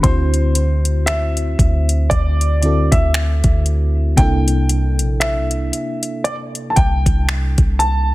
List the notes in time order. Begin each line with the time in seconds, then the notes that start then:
0.02 D2 D3 C4 E4 C5, kick, closed hi-hat
0.06 F#4 C5
0.34 closed hi-hat
0.55 closed hi-hat
0.85 closed hi-hat
1.06 E5, finger snap, closed hi-hat
1.37 closed hi-hat
1.59 D2, kick, closed hi-hat
1.89 closed hi-hat
2.10 D2 D5, kick, closed hi-hat
2.41 closed hi-hat
2.62 D3 C4 E4 F#4 A4, closed hi-hat
2.92 D2 E5, kick, closed hi-hat
3.14 finger snap
3.44 D2, kick, closed hi-hat
3.66 closed hi-hat
4.16 C2 C3 A#3 D4 G5, kick, closed hi-hat
4.21 E4 A4
4.48 closed hi-hat
4.69 closed hi-hat
4.99 A#1, closed hi-hat
5.20 E5, finger snap, closed hi-hat
5.37 C2
5.51 closed hi-hat
5.73 closed hi-hat
6.03 closed hi-hat
6.24 D5, closed hi-hat
6.55 closed hi-hat
6.70 A5
6.76 C2 G5, kick, closed hi-hat
7.06 C2, kick, closed hi-hat
7.29 finger snap
7.58 C2, kick, closed hi-hat
7.79 A5, closed hi-hat